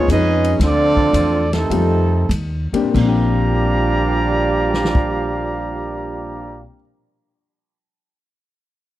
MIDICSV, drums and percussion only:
0, 0, Header, 1, 2, 480
1, 0, Start_track
1, 0, Key_signature, -2, "major"
1, 0, Tempo, 520382
1, 554, Time_signature, 4, 2, 24, 8
1, 1047, Tempo, 580271
1, 2007, Tempo, 666667
1, 6828, End_track
2, 0, Start_track
2, 0, Title_t, "Drums"
2, 88, Note_on_c, 9, 44, 52
2, 88, Note_on_c, 9, 51, 76
2, 180, Note_off_c, 9, 44, 0
2, 180, Note_off_c, 9, 51, 0
2, 410, Note_on_c, 9, 51, 60
2, 502, Note_off_c, 9, 51, 0
2, 560, Note_on_c, 9, 38, 47
2, 560, Note_on_c, 9, 51, 81
2, 652, Note_off_c, 9, 51, 0
2, 653, Note_off_c, 9, 38, 0
2, 892, Note_on_c, 9, 36, 59
2, 985, Note_off_c, 9, 36, 0
2, 1052, Note_on_c, 9, 44, 54
2, 1052, Note_on_c, 9, 51, 82
2, 1135, Note_off_c, 9, 44, 0
2, 1135, Note_off_c, 9, 51, 0
2, 1374, Note_on_c, 9, 38, 74
2, 1374, Note_on_c, 9, 51, 56
2, 1456, Note_off_c, 9, 51, 0
2, 1457, Note_off_c, 9, 38, 0
2, 1525, Note_on_c, 9, 51, 70
2, 1608, Note_off_c, 9, 51, 0
2, 2016, Note_on_c, 9, 44, 62
2, 2016, Note_on_c, 9, 51, 82
2, 2088, Note_off_c, 9, 44, 0
2, 2088, Note_off_c, 9, 51, 0
2, 2325, Note_on_c, 9, 51, 58
2, 2397, Note_off_c, 9, 51, 0
2, 2477, Note_on_c, 9, 36, 65
2, 2482, Note_on_c, 9, 49, 67
2, 2549, Note_off_c, 9, 36, 0
2, 2554, Note_off_c, 9, 49, 0
2, 3765, Note_on_c, 9, 38, 64
2, 3837, Note_off_c, 9, 38, 0
2, 3844, Note_on_c, 9, 38, 74
2, 3916, Note_off_c, 9, 38, 0
2, 3918, Note_on_c, 9, 36, 86
2, 3990, Note_off_c, 9, 36, 0
2, 6828, End_track
0, 0, End_of_file